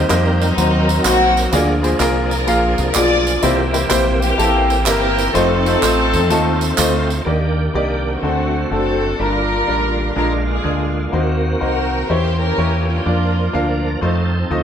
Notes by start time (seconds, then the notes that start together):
Already playing: D#3 G3 C4 D#4 A#4
0.09 F2 A#3 D#4 G4 C5, clap, tambourine
0.40 F#3 C4 D#4, tambourine
0.56 D#2 D#3 F#3 A#3 C4 D#4 F#4 A#4 C5, tambourine
0.89 tambourine
1.05 A#1 A#3 C4 D#4 F#4 C5, clap, tambourine
1.37 tambourine
1.52 D2 D3 F3 A#3 C#4 F4 G#4 D5, tambourine
1.58 D4
1.83 A#3 F4 G#4 C5, tambourine
1.99 C2 A#3 F4 G#4 A#4, clap, tambourine
2.31 F4 A#4, tambourine
2.47 A#1 A#3 F4 G#4 F5, tambourine
2.78 C2, tambourine
2.94 B1 A#3 F4 G#4 D5, clap, tambourine
3.27 tambourine
3.42 C2 C3 E3 A#3 C4 E4 G4 C5, tambourine
3.73 A#3 E4 G4 C5, tambourine
3.89 A#1 A#3 E4 G4 C5, clap, tambourine
4.22 A#3 E4 G4, tambourine
4.37 A1 A#3 E4 G4 A4, tambourine
4.70 tambourine
4.86 G1 A#3 E4 G4 A#4, clap, tambourine
5.18 tambourine
5.34 F1 A3 C4 D#4 E4 F4 A4 C5, tambourine
5.40 F4
5.65 A3 D#4 F4 C5, tambourine
5.82 A1 A3 D#4 F4 C5, clap, tambourine
6.14 F2, tambourine
6.30 D#2 A3 D#4 F4 A4, tambourine
6.61 tambourine
6.78 D2 A3 D#4 F4 C5, clap, tambourine
7.10 tambourine
7.25 D#2 D#3 A#3 D4 D#4 G4 D5
7.74 C2 A#3 D#4 G4 D5
8.06 A3 C4 F#4
8.21 D2 D3 A3 C4 D4 D#4 F#4 C5
8.27 F#4
8.71 F#1 A3 C4 D4 F#4 A4
9.19 G1 G2 D3 G3 A#3 D4 E4 F4 A#4
9.25 F4
9.67 A1 G3 D4 F4 A#4
10.16 A#1 A#2 D3 G#3 A#3 D4 F4 A#4
10.48 D4 F4 G#4
10.63 D2 G#3 D4 F4 G#4
11.12 D#2 D#3 A#3 C4 D#4 F4 F#4 C5
11.19 F#4
11.60 C2 A#3 D#4 F#4 A#4 C5
12.09 E2 E3 A#3 C#4 E4 F#4 G4 C5 C#5
12.16 G4
12.40 C#4 G4 A#4
12.58 E2 A#3 E4 G4 C#5
12.90 A#3 D4 F4
13.06 F2 F3 A#3 D4 F4 A#4 D5
13.53 D2 A#3 D4 F4 F5
14.01 F2 F3 A3 C4 D#4 F4 A4 C5
14.50 D2 A3 D#4 F4 D#5